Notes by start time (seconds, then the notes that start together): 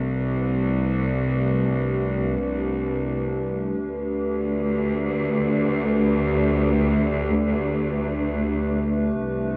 Already playing: C2 A3 D4 G4 B4
3.83 D2 A3
9.20 C2